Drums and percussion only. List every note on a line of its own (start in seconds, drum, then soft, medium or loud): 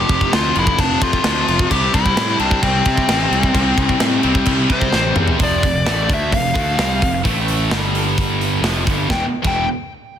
0.09 kick medium
0.09 crash medium
0.21 kick medium
0.33 snare loud
0.33 crash medium
0.55 crash medium
0.67 kick loud
0.79 kick loud
0.79 crash medium
1.02 kick loud
1.02 crash medium
1.13 kick medium
1.24 snare loud
1.24 crash loud
1.48 crash medium
1.59 kick loud
1.71 kick loud
1.71 crash loud
1.94 kick loud
1.94 crash medium
2.06 kick medium
2.17 snare loud
2.17 crash medium
2.40 crash medium
2.51 kick medium
2.63 kick loud
2.63 crash medium
2.85 kick medium
2.85 crash medium
2.97 kick medium
3.09 snare loud
3.09 crash loud
3.33 crash medium
3.43 kick medium
3.55 kick loud
3.55 crash medium
3.78 kick medium
3.78 crash medium
3.89 kick medium
4.00 snare loud
4.00 crash medium
4.23 crash medium
4.35 kick loud
4.46 kick loud
4.46 crash medium
4.70 kick medium
4.70 crash medium
4.81 kick medium
4.93 snare medium
5.16 mid tom loud
5.28 floor tom loud
5.39 kick loud
5.39 open hi-hat medium
5.63 kick loud
5.63 open hi-hat medium
5.86 snare loud
5.86 open hi-hat medium
6.10 kick loud
6.10 open hi-hat medium
6.32 kick medium
6.32 open hi-hat medium
6.55 kick loud
6.55 open hi-hat medium
6.79 snare loud
6.79 open hi-hat medium
7.02 kick medium
7.02 open hi-hat medium
7.25 kick loud
7.25 open hi-hat medium
7.48 open hi-hat medium
7.71 snare loud
7.71 open hi-hat medium
7.95 open hi-hat medium
8.18 kick loud
8.18 open hi-hat medium
8.41 open hi-hat medium
8.64 snare loud
8.64 open hi-hat medium
8.87 kick loud
8.87 open hi-hat medium
9.10 kick loud
9.10 snare medium
9.44 kick loud
9.44 crash medium